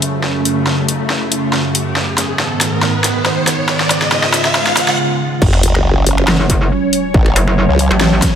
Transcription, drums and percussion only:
0.02 closed hi-hat
0.24 snare
0.45 closed hi-hat
0.67 snare
0.89 closed hi-hat
1.10 snare
1.32 closed hi-hat
1.53 snare
1.75 closed hi-hat
1.96 snare
2.18 snare, closed hi-hat
2.40 snare
2.61 snare, closed hi-hat
2.83 snare
3.04 snare, closed hi-hat
3.26 snare
3.47 snare, closed hi-hat
3.69 snare
3.80 snare
3.91 snare, closed hi-hat
4.02 snare
4.12 snare
4.24 snare
4.34 snare, closed hi-hat
4.45 snare
4.55 snare
4.67 snare
4.77 snare, closed hi-hat
4.88 snare
5.42 kick, crash
5.53 finger snap
5.63 closed hi-hat
5.75 finger snap
6.07 closed hi-hat
6.18 finger snap
6.28 snare
6.50 kick, closed hi-hat
6.93 closed hi-hat
7.14 kick
7.26 finger snap
7.36 closed hi-hat
7.48 finger snap
7.79 closed hi-hat
7.91 finger snap
8.01 snare
8.22 kick, snare, closed hi-hat

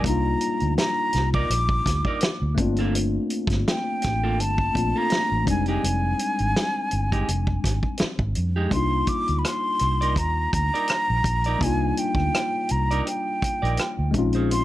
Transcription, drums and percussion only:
0.04 kick, closed hi-hat
0.41 closed hi-hat
0.60 closed hi-hat
0.78 snare, closed hi-hat
1.13 snare, closed hi-hat
1.34 kick
1.50 closed hi-hat
1.69 kick
1.86 kick, snare, closed hi-hat
2.05 kick
2.21 snare, closed hi-hat
2.58 kick, closed hi-hat
2.76 closed hi-hat
2.95 closed hi-hat
3.30 closed hi-hat
3.47 kick, snare, closed hi-hat
3.68 snare, closed hi-hat
4.02 kick, snare, closed hi-hat
4.40 closed hi-hat
4.58 kick
4.75 kick, closed hi-hat
5.10 snare, closed hi-hat
5.47 kick, closed hi-hat
5.66 closed hi-hat
5.84 closed hi-hat
6.19 closed hi-hat
6.39 closed hi-hat
6.56 snare, closed hi-hat
6.91 closed hi-hat
7.12 kick, closed hi-hat
7.29 closed hi-hat
7.47 kick
7.64 kick, snare, closed hi-hat
7.83 kick
7.98 snare, closed hi-hat
8.19 kick
8.35 closed hi-hat
8.71 kick, closed hi-hat
9.07 kick, closed hi-hat
9.28 closed hi-hat
9.45 cross-stick, closed hi-hat
9.79 cross-stick, closed hi-hat
10.02 closed hi-hat
10.16 kick, closed hi-hat
10.53 kick, closed hi-hat
10.75 closed hi-hat
10.88 cross-stick, closed hi-hat
11.24 kick, closed hi-hat
11.44 closed hi-hat
11.61 kick, closed hi-hat
11.97 closed hi-hat
12.15 kick, cross-stick
12.35 cross-stick, closed hi-hat
12.69 closed hi-hat
12.91 closed hi-hat
13.07 closed hi-hat
13.42 kick, closed hi-hat
13.65 closed hi-hat
13.77 cross-stick, closed hi-hat
14.14 kick, closed hi-hat
14.33 closed hi-hat
14.51 closed hi-hat

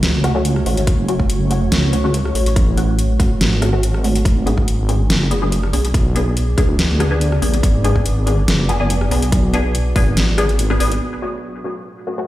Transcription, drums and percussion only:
0.03 snare, closed hi-hat
0.24 cross-stick, closed hi-hat
0.45 closed hi-hat
0.56 cross-stick
0.66 open hi-hat
0.77 closed hi-hat
0.87 kick, closed hi-hat
1.08 closed hi-hat
1.20 kick
1.30 closed hi-hat
1.51 closed hi-hat
1.72 snare, closed hi-hat
1.93 closed hi-hat
2.14 closed hi-hat
2.25 cross-stick
2.35 open hi-hat
2.46 closed hi-hat
2.56 kick, closed hi-hat
2.77 closed hi-hat
2.99 closed hi-hat
3.20 kick, closed hi-hat
3.41 snare, closed hi-hat
3.62 cross-stick, closed hi-hat
3.83 closed hi-hat
3.94 cross-stick
4.04 open hi-hat
4.15 closed hi-hat
4.25 kick, closed hi-hat
4.47 closed hi-hat
4.58 kick
4.68 closed hi-hat
4.89 closed hi-hat
5.10 snare, closed hi-hat
5.31 closed hi-hat
5.52 closed hi-hat
5.63 cross-stick
5.73 open hi-hat
5.85 closed hi-hat
5.94 kick, closed hi-hat
6.16 closed hi-hat
6.37 closed hi-hat
6.58 kick, closed hi-hat
6.79 snare, closed hi-hat
7.00 cross-stick, closed hi-hat
7.21 closed hi-hat
7.32 cross-stick
7.42 open hi-hat
7.54 closed hi-hat
7.63 kick, closed hi-hat
7.85 closed hi-hat
7.96 kick
8.06 closed hi-hat
8.27 closed hi-hat
8.48 snare, closed hi-hat
8.69 closed hi-hat
8.90 closed hi-hat
9.01 cross-stick
9.11 open hi-hat
9.22 closed hi-hat
9.32 kick, closed hi-hat
9.54 closed hi-hat
9.75 closed hi-hat
9.96 kick, open hi-hat
10.17 snare, closed hi-hat
10.38 cross-stick, closed hi-hat
10.49 closed hi-hat
10.59 closed hi-hat
10.70 cross-stick
10.80 open hi-hat
10.92 closed hi-hat

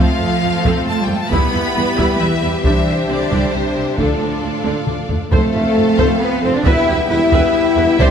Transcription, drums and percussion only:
0.65 taiko
1.32 taiko
1.99 taiko
2.64 taiko
3.32 taiko
3.99 taiko
4.65 taiko high
4.87 taiko mid
5.09 taiko low
5.32 taiko
5.99 taiko
6.66 taiko
7.32 taiko
7.99 taiko

